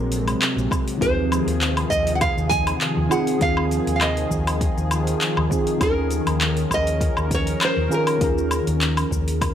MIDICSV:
0, 0, Header, 1, 6, 480
1, 0, Start_track
1, 0, Tempo, 600000
1, 812, Time_signature, 4, 2, 24, 8
1, 7632, End_track
2, 0, Start_track
2, 0, Title_t, "Nylon-string guitar"
2, 0, Program_c, 0, 24
2, 0, Note_on_c, 0, 70, 87
2, 543, Note_off_c, 0, 70, 0
2, 815, Note_on_c, 0, 72, 100
2, 1501, Note_off_c, 0, 72, 0
2, 1520, Note_on_c, 0, 75, 97
2, 1719, Note_off_c, 0, 75, 0
2, 1723, Note_on_c, 0, 78, 75
2, 1767, Note_off_c, 0, 78, 0
2, 1771, Note_on_c, 0, 77, 104
2, 1992, Note_off_c, 0, 77, 0
2, 1995, Note_on_c, 0, 80, 106
2, 2486, Note_off_c, 0, 80, 0
2, 2489, Note_on_c, 0, 78, 95
2, 2735, Note_off_c, 0, 78, 0
2, 2738, Note_on_c, 0, 77, 106
2, 3157, Note_off_c, 0, 77, 0
2, 3166, Note_on_c, 0, 77, 67
2, 3214, Note_on_c, 0, 75, 85
2, 3215, Note_off_c, 0, 77, 0
2, 4381, Note_off_c, 0, 75, 0
2, 4662, Note_on_c, 0, 70, 105
2, 5345, Note_off_c, 0, 70, 0
2, 5393, Note_on_c, 0, 75, 111
2, 5876, Note_off_c, 0, 75, 0
2, 5876, Note_on_c, 0, 73, 94
2, 6111, Note_off_c, 0, 73, 0
2, 6117, Note_on_c, 0, 72, 99
2, 6350, Note_off_c, 0, 72, 0
2, 6353, Note_on_c, 0, 70, 83
2, 7632, Note_off_c, 0, 70, 0
2, 7632, End_track
3, 0, Start_track
3, 0, Title_t, "FM electric piano"
3, 0, Program_c, 1, 5
3, 0, Control_c, 1, 64, 127
3, 0, Note_on_c, 1, 54, 74
3, 0, Note_on_c, 1, 60, 86
3, 0, Note_on_c, 1, 66, 86
3, 0, Note_on_c, 1, 68, 88
3, 534, Note_off_c, 1, 60, 0
3, 546, Note_off_c, 1, 54, 0
3, 557, Note_off_c, 1, 68, 0
3, 782, Note_on_c, 1, 51, 84
3, 798, Note_on_c, 1, 60, 76
3, 812, Note_on_c, 1, 65, 72
3, 822, Control_c, 1, 64, 0
3, 825, Note_off_c, 1, 66, 0
3, 831, Note_on_c, 1, 68, 90
3, 968, Control_c, 1, 64, 127
3, 2450, Note_off_c, 1, 51, 0
3, 2458, Note_off_c, 1, 60, 0
3, 2465, Note_off_c, 1, 65, 0
3, 2472, Note_on_c, 1, 51, 95
3, 2474, Note_off_c, 1, 68, 0
3, 2480, Note_on_c, 1, 60, 83
3, 2486, Note_on_c, 1, 65, 82
3, 2494, Note_on_c, 1, 68, 104
3, 2691, Note_off_c, 1, 51, 0
3, 2699, Note_off_c, 1, 60, 0
3, 2701, Note_on_c, 1, 51, 77
3, 2702, Note_off_c, 1, 65, 0
3, 2706, Note_off_c, 1, 68, 0
3, 2714, Note_on_c, 1, 60, 76
3, 2732, Note_on_c, 1, 65, 75
3, 2746, Note_on_c, 1, 68, 90
3, 4369, Note_off_c, 1, 51, 0
3, 4376, Note_off_c, 1, 60, 0
3, 4385, Note_off_c, 1, 65, 0
3, 4392, Note_off_c, 1, 68, 0
3, 4393, Note_on_c, 1, 51, 91
3, 4399, Note_on_c, 1, 60, 84
3, 4408, Note_on_c, 1, 65, 82
3, 4415, Note_on_c, 1, 68, 98
3, 4612, Note_off_c, 1, 51, 0
3, 4619, Note_off_c, 1, 60, 0
3, 4622, Note_on_c, 1, 51, 83
3, 4623, Note_off_c, 1, 65, 0
3, 4627, Note_off_c, 1, 68, 0
3, 4635, Note_on_c, 1, 61, 74
3, 4645, Note_on_c, 1, 65, 73
3, 4657, Note_on_c, 1, 68, 73
3, 4662, Control_c, 1, 64, 0
3, 4667, Note_on_c, 1, 70, 91
3, 4791, Control_c, 1, 64, 127
3, 6290, Note_off_c, 1, 51, 0
3, 6297, Note_off_c, 1, 61, 0
3, 6302, Note_off_c, 1, 65, 0
3, 6308, Note_off_c, 1, 68, 0
3, 6313, Note_off_c, 1, 70, 0
3, 6314, Note_on_c, 1, 51, 94
3, 6322, Note_on_c, 1, 61, 83
3, 6326, Note_on_c, 1, 65, 91
3, 6334, Note_on_c, 1, 68, 85
3, 6341, Note_on_c, 1, 70, 101
3, 6536, Note_off_c, 1, 51, 0
3, 6540, Note_off_c, 1, 61, 0
3, 6542, Note_off_c, 1, 65, 0
3, 6545, Note_on_c, 1, 51, 82
3, 6546, Note_off_c, 1, 68, 0
3, 6550, Note_off_c, 1, 70, 0
3, 6554, Note_on_c, 1, 61, 77
3, 6567, Note_on_c, 1, 65, 76
3, 6580, Note_on_c, 1, 68, 80
3, 6590, Note_on_c, 1, 70, 91
3, 7632, Note_off_c, 1, 51, 0
3, 7632, Note_off_c, 1, 61, 0
3, 7632, Note_off_c, 1, 65, 0
3, 7632, Note_off_c, 1, 68, 0
3, 7632, Note_off_c, 1, 70, 0
3, 7632, End_track
4, 0, Start_track
4, 0, Title_t, "Analog synth pad"
4, 0, Program_c, 2, 89
4, 0, Note_on_c, 2, 48, 77
4, 0, Note_on_c, 2, 54, 89
4, 0, Note_on_c, 2, 56, 84
4, 778, Note_off_c, 2, 56, 0
4, 779, Note_off_c, 2, 54, 0
4, 804, Note_on_c, 2, 51, 79
4, 804, Note_on_c, 2, 53, 81
4, 804, Note_on_c, 2, 68, 95
4, 4619, Note_off_c, 2, 48, 0
4, 4640, Note_on_c, 2, 61, 75
4, 4643, Note_on_c, 2, 70, 91
4, 7632, Note_off_c, 2, 51, 0
4, 7632, Note_off_c, 2, 53, 0
4, 7632, Note_off_c, 2, 61, 0
4, 7632, Note_off_c, 2, 68, 0
4, 7632, Note_off_c, 2, 70, 0
4, 7632, End_track
5, 0, Start_track
5, 0, Title_t, "Fingered electric bass"
5, 0, Program_c, 3, 33
5, 0, Note_on_c, 3, 34, 87
5, 270, Note_off_c, 3, 34, 0
5, 452, Note_on_c, 3, 34, 88
5, 530, Note_off_c, 3, 34, 0
5, 813, Note_on_c, 3, 39, 95
5, 1110, Note_off_c, 3, 39, 0
5, 1172, Note_on_c, 3, 39, 76
5, 1467, Note_off_c, 3, 39, 0
5, 1529, Note_on_c, 3, 39, 91
5, 1829, Note_off_c, 3, 39, 0
5, 1898, Note_on_c, 3, 39, 86
5, 2190, Note_off_c, 3, 39, 0
5, 2378, Note_on_c, 3, 39, 97
5, 2453, Note_off_c, 3, 39, 0
5, 2730, Note_on_c, 3, 39, 98
5, 3029, Note_off_c, 3, 39, 0
5, 3097, Note_on_c, 3, 39, 76
5, 3389, Note_off_c, 3, 39, 0
5, 3449, Note_on_c, 3, 39, 90
5, 3748, Note_off_c, 3, 39, 0
5, 3817, Note_on_c, 3, 39, 82
5, 4109, Note_off_c, 3, 39, 0
5, 4300, Note_on_c, 3, 39, 96
5, 4374, Note_off_c, 3, 39, 0
5, 4648, Note_on_c, 3, 39, 93
5, 4948, Note_off_c, 3, 39, 0
5, 5014, Note_on_c, 3, 39, 75
5, 5308, Note_off_c, 3, 39, 0
5, 5368, Note_on_c, 3, 39, 90
5, 5668, Note_off_c, 3, 39, 0
5, 5739, Note_on_c, 3, 39, 82
5, 6030, Note_off_c, 3, 39, 0
5, 6216, Note_on_c, 3, 39, 97
5, 6292, Note_off_c, 3, 39, 0
5, 6570, Note_on_c, 3, 39, 96
5, 6869, Note_off_c, 3, 39, 0
5, 6938, Note_on_c, 3, 39, 83
5, 7230, Note_off_c, 3, 39, 0
5, 7289, Note_on_c, 3, 39, 98
5, 7632, Note_off_c, 3, 39, 0
5, 7632, End_track
6, 0, Start_track
6, 0, Title_t, "Drums"
6, 94, Note_on_c, 9, 46, 50
6, 100, Note_on_c, 9, 82, 73
6, 174, Note_off_c, 9, 46, 0
6, 180, Note_off_c, 9, 82, 0
6, 220, Note_on_c, 9, 46, 41
6, 220, Note_on_c, 9, 77, 71
6, 227, Note_on_c, 9, 82, 34
6, 300, Note_off_c, 9, 46, 0
6, 300, Note_off_c, 9, 77, 0
6, 307, Note_off_c, 9, 82, 0
6, 334, Note_on_c, 9, 39, 100
6, 334, Note_on_c, 9, 46, 51
6, 341, Note_on_c, 9, 82, 44
6, 414, Note_off_c, 9, 39, 0
6, 414, Note_off_c, 9, 46, 0
6, 421, Note_off_c, 9, 82, 0
6, 468, Note_on_c, 9, 82, 31
6, 548, Note_off_c, 9, 82, 0
6, 569, Note_on_c, 9, 36, 113
6, 573, Note_on_c, 9, 77, 74
6, 580, Note_on_c, 9, 82, 75
6, 649, Note_off_c, 9, 36, 0
6, 653, Note_off_c, 9, 77, 0
6, 660, Note_off_c, 9, 82, 0
6, 701, Note_on_c, 9, 46, 42
6, 707, Note_on_c, 9, 82, 34
6, 781, Note_off_c, 9, 46, 0
6, 787, Note_off_c, 9, 82, 0
6, 809, Note_on_c, 9, 36, 118
6, 815, Note_on_c, 9, 46, 56
6, 822, Note_on_c, 9, 82, 46
6, 889, Note_off_c, 9, 36, 0
6, 895, Note_off_c, 9, 46, 0
6, 902, Note_off_c, 9, 82, 0
6, 1055, Note_on_c, 9, 46, 30
6, 1055, Note_on_c, 9, 77, 80
6, 1062, Note_on_c, 9, 82, 80
6, 1135, Note_off_c, 9, 46, 0
6, 1135, Note_off_c, 9, 77, 0
6, 1142, Note_off_c, 9, 82, 0
6, 1182, Note_on_c, 9, 46, 39
6, 1188, Note_on_c, 9, 82, 32
6, 1262, Note_off_c, 9, 46, 0
6, 1268, Note_off_c, 9, 82, 0
6, 1291, Note_on_c, 9, 39, 95
6, 1291, Note_on_c, 9, 46, 49
6, 1297, Note_on_c, 9, 82, 46
6, 1371, Note_off_c, 9, 39, 0
6, 1371, Note_off_c, 9, 46, 0
6, 1377, Note_off_c, 9, 82, 0
6, 1416, Note_on_c, 9, 46, 32
6, 1416, Note_on_c, 9, 77, 81
6, 1496, Note_off_c, 9, 46, 0
6, 1496, Note_off_c, 9, 77, 0
6, 1529, Note_on_c, 9, 36, 62
6, 1535, Note_on_c, 9, 82, 75
6, 1609, Note_off_c, 9, 36, 0
6, 1615, Note_off_c, 9, 82, 0
6, 1655, Note_on_c, 9, 46, 45
6, 1662, Note_on_c, 9, 82, 34
6, 1735, Note_off_c, 9, 46, 0
6, 1742, Note_off_c, 9, 82, 0
6, 1769, Note_on_c, 9, 46, 53
6, 1769, Note_on_c, 9, 77, 80
6, 1770, Note_on_c, 9, 36, 116
6, 1776, Note_on_c, 9, 82, 43
6, 1849, Note_off_c, 9, 46, 0
6, 1849, Note_off_c, 9, 77, 0
6, 1850, Note_off_c, 9, 36, 0
6, 1856, Note_off_c, 9, 82, 0
6, 1904, Note_on_c, 9, 82, 32
6, 1984, Note_off_c, 9, 82, 0
6, 2006, Note_on_c, 9, 46, 51
6, 2009, Note_on_c, 9, 36, 101
6, 2013, Note_on_c, 9, 82, 73
6, 2086, Note_off_c, 9, 46, 0
6, 2089, Note_off_c, 9, 36, 0
6, 2093, Note_off_c, 9, 82, 0
6, 2135, Note_on_c, 9, 46, 42
6, 2135, Note_on_c, 9, 77, 77
6, 2142, Note_on_c, 9, 82, 33
6, 2215, Note_off_c, 9, 46, 0
6, 2215, Note_off_c, 9, 77, 0
6, 2222, Note_off_c, 9, 82, 0
6, 2248, Note_on_c, 9, 39, 88
6, 2248, Note_on_c, 9, 46, 52
6, 2255, Note_on_c, 9, 82, 42
6, 2328, Note_off_c, 9, 39, 0
6, 2328, Note_off_c, 9, 46, 0
6, 2335, Note_off_c, 9, 82, 0
6, 2488, Note_on_c, 9, 77, 76
6, 2494, Note_on_c, 9, 82, 78
6, 2568, Note_off_c, 9, 77, 0
6, 2574, Note_off_c, 9, 82, 0
6, 2618, Note_on_c, 9, 46, 40
6, 2624, Note_on_c, 9, 82, 31
6, 2698, Note_off_c, 9, 46, 0
6, 2704, Note_off_c, 9, 82, 0
6, 2728, Note_on_c, 9, 46, 55
6, 2729, Note_on_c, 9, 36, 115
6, 2734, Note_on_c, 9, 82, 42
6, 2808, Note_off_c, 9, 46, 0
6, 2809, Note_off_c, 9, 36, 0
6, 2814, Note_off_c, 9, 82, 0
6, 2856, Note_on_c, 9, 77, 88
6, 2936, Note_off_c, 9, 77, 0
6, 2970, Note_on_c, 9, 46, 30
6, 2977, Note_on_c, 9, 82, 71
6, 3050, Note_off_c, 9, 46, 0
6, 3057, Note_off_c, 9, 82, 0
6, 3099, Note_on_c, 9, 46, 41
6, 3105, Note_on_c, 9, 82, 32
6, 3179, Note_off_c, 9, 46, 0
6, 3185, Note_off_c, 9, 82, 0
6, 3207, Note_on_c, 9, 39, 93
6, 3207, Note_on_c, 9, 46, 55
6, 3207, Note_on_c, 9, 77, 77
6, 3214, Note_on_c, 9, 82, 43
6, 3287, Note_off_c, 9, 39, 0
6, 3287, Note_off_c, 9, 46, 0
6, 3287, Note_off_c, 9, 77, 0
6, 3294, Note_off_c, 9, 82, 0
6, 3336, Note_on_c, 9, 46, 32
6, 3416, Note_off_c, 9, 46, 0
6, 3447, Note_on_c, 9, 36, 57
6, 3453, Note_on_c, 9, 82, 76
6, 3527, Note_off_c, 9, 36, 0
6, 3533, Note_off_c, 9, 82, 0
6, 3579, Note_on_c, 9, 46, 45
6, 3579, Note_on_c, 9, 77, 85
6, 3585, Note_on_c, 9, 82, 34
6, 3659, Note_off_c, 9, 46, 0
6, 3659, Note_off_c, 9, 77, 0
6, 3665, Note_off_c, 9, 82, 0
6, 3687, Note_on_c, 9, 36, 110
6, 3689, Note_on_c, 9, 46, 56
6, 3695, Note_on_c, 9, 82, 43
6, 3767, Note_off_c, 9, 36, 0
6, 3769, Note_off_c, 9, 46, 0
6, 3775, Note_off_c, 9, 82, 0
6, 3822, Note_on_c, 9, 82, 31
6, 3902, Note_off_c, 9, 82, 0
6, 3928, Note_on_c, 9, 46, 50
6, 3928, Note_on_c, 9, 77, 84
6, 3935, Note_on_c, 9, 82, 69
6, 4008, Note_off_c, 9, 46, 0
6, 4008, Note_off_c, 9, 77, 0
6, 4015, Note_off_c, 9, 82, 0
6, 4057, Note_on_c, 9, 46, 45
6, 4064, Note_on_c, 9, 82, 30
6, 4137, Note_off_c, 9, 46, 0
6, 4144, Note_off_c, 9, 82, 0
6, 4169, Note_on_c, 9, 39, 89
6, 4169, Note_on_c, 9, 46, 54
6, 4175, Note_on_c, 9, 82, 42
6, 4249, Note_off_c, 9, 39, 0
6, 4249, Note_off_c, 9, 46, 0
6, 4255, Note_off_c, 9, 82, 0
6, 4297, Note_on_c, 9, 77, 77
6, 4377, Note_off_c, 9, 77, 0
6, 4407, Note_on_c, 9, 36, 101
6, 4415, Note_on_c, 9, 82, 79
6, 4487, Note_off_c, 9, 36, 0
6, 4495, Note_off_c, 9, 82, 0
6, 4535, Note_on_c, 9, 46, 44
6, 4542, Note_on_c, 9, 82, 30
6, 4615, Note_off_c, 9, 46, 0
6, 4622, Note_off_c, 9, 82, 0
6, 4647, Note_on_c, 9, 36, 113
6, 4647, Note_on_c, 9, 46, 59
6, 4647, Note_on_c, 9, 77, 78
6, 4653, Note_on_c, 9, 82, 43
6, 4727, Note_off_c, 9, 36, 0
6, 4727, Note_off_c, 9, 46, 0
6, 4727, Note_off_c, 9, 77, 0
6, 4733, Note_off_c, 9, 82, 0
6, 4884, Note_on_c, 9, 46, 32
6, 4890, Note_on_c, 9, 82, 77
6, 4964, Note_off_c, 9, 46, 0
6, 4970, Note_off_c, 9, 82, 0
6, 5015, Note_on_c, 9, 46, 47
6, 5015, Note_on_c, 9, 77, 77
6, 5021, Note_on_c, 9, 82, 30
6, 5095, Note_off_c, 9, 46, 0
6, 5095, Note_off_c, 9, 77, 0
6, 5101, Note_off_c, 9, 82, 0
6, 5128, Note_on_c, 9, 39, 98
6, 5128, Note_on_c, 9, 46, 56
6, 5134, Note_on_c, 9, 82, 42
6, 5208, Note_off_c, 9, 39, 0
6, 5208, Note_off_c, 9, 46, 0
6, 5214, Note_off_c, 9, 82, 0
6, 5254, Note_on_c, 9, 46, 36
6, 5334, Note_off_c, 9, 46, 0
6, 5366, Note_on_c, 9, 36, 59
6, 5368, Note_on_c, 9, 77, 85
6, 5374, Note_on_c, 9, 82, 76
6, 5446, Note_off_c, 9, 36, 0
6, 5448, Note_off_c, 9, 77, 0
6, 5454, Note_off_c, 9, 82, 0
6, 5496, Note_on_c, 9, 46, 44
6, 5503, Note_on_c, 9, 82, 33
6, 5576, Note_off_c, 9, 46, 0
6, 5583, Note_off_c, 9, 82, 0
6, 5606, Note_on_c, 9, 36, 107
6, 5609, Note_on_c, 9, 46, 60
6, 5616, Note_on_c, 9, 82, 41
6, 5686, Note_off_c, 9, 36, 0
6, 5689, Note_off_c, 9, 46, 0
6, 5696, Note_off_c, 9, 82, 0
6, 5734, Note_on_c, 9, 77, 80
6, 5741, Note_on_c, 9, 82, 29
6, 5814, Note_off_c, 9, 77, 0
6, 5821, Note_off_c, 9, 82, 0
6, 5846, Note_on_c, 9, 36, 100
6, 5848, Note_on_c, 9, 46, 52
6, 5855, Note_on_c, 9, 82, 70
6, 5926, Note_off_c, 9, 36, 0
6, 5928, Note_off_c, 9, 46, 0
6, 5935, Note_off_c, 9, 82, 0
6, 5976, Note_on_c, 9, 46, 45
6, 5982, Note_on_c, 9, 82, 32
6, 6056, Note_off_c, 9, 46, 0
6, 6062, Note_off_c, 9, 82, 0
6, 6089, Note_on_c, 9, 39, 98
6, 6089, Note_on_c, 9, 46, 57
6, 6089, Note_on_c, 9, 77, 82
6, 6096, Note_on_c, 9, 82, 40
6, 6169, Note_off_c, 9, 39, 0
6, 6169, Note_off_c, 9, 46, 0
6, 6169, Note_off_c, 9, 77, 0
6, 6176, Note_off_c, 9, 82, 0
6, 6334, Note_on_c, 9, 82, 76
6, 6414, Note_off_c, 9, 82, 0
6, 6456, Note_on_c, 9, 46, 46
6, 6456, Note_on_c, 9, 77, 83
6, 6462, Note_on_c, 9, 82, 30
6, 6536, Note_off_c, 9, 46, 0
6, 6536, Note_off_c, 9, 77, 0
6, 6542, Note_off_c, 9, 82, 0
6, 6568, Note_on_c, 9, 36, 111
6, 6569, Note_on_c, 9, 46, 62
6, 6575, Note_on_c, 9, 82, 46
6, 6648, Note_off_c, 9, 36, 0
6, 6649, Note_off_c, 9, 46, 0
6, 6655, Note_off_c, 9, 82, 0
6, 6704, Note_on_c, 9, 82, 32
6, 6784, Note_off_c, 9, 82, 0
6, 6807, Note_on_c, 9, 46, 33
6, 6807, Note_on_c, 9, 77, 80
6, 6814, Note_on_c, 9, 82, 72
6, 6887, Note_off_c, 9, 46, 0
6, 6887, Note_off_c, 9, 77, 0
6, 6894, Note_off_c, 9, 82, 0
6, 6938, Note_on_c, 9, 46, 44
6, 6945, Note_on_c, 9, 82, 32
6, 7018, Note_off_c, 9, 46, 0
6, 7025, Note_off_c, 9, 82, 0
6, 7051, Note_on_c, 9, 39, 102
6, 7051, Note_on_c, 9, 46, 58
6, 7057, Note_on_c, 9, 82, 42
6, 7131, Note_off_c, 9, 39, 0
6, 7131, Note_off_c, 9, 46, 0
6, 7137, Note_off_c, 9, 82, 0
6, 7178, Note_on_c, 9, 46, 35
6, 7178, Note_on_c, 9, 77, 89
6, 7184, Note_on_c, 9, 82, 31
6, 7258, Note_off_c, 9, 46, 0
6, 7258, Note_off_c, 9, 77, 0
6, 7264, Note_off_c, 9, 82, 0
6, 7289, Note_on_c, 9, 36, 55
6, 7299, Note_on_c, 9, 82, 71
6, 7369, Note_off_c, 9, 36, 0
6, 7379, Note_off_c, 9, 82, 0
6, 7422, Note_on_c, 9, 46, 51
6, 7428, Note_on_c, 9, 82, 32
6, 7502, Note_off_c, 9, 46, 0
6, 7508, Note_off_c, 9, 82, 0
6, 7531, Note_on_c, 9, 36, 112
6, 7533, Note_on_c, 9, 46, 60
6, 7533, Note_on_c, 9, 77, 82
6, 7539, Note_on_c, 9, 82, 42
6, 7611, Note_off_c, 9, 36, 0
6, 7613, Note_off_c, 9, 46, 0
6, 7613, Note_off_c, 9, 77, 0
6, 7619, Note_off_c, 9, 82, 0
6, 7632, End_track
0, 0, End_of_file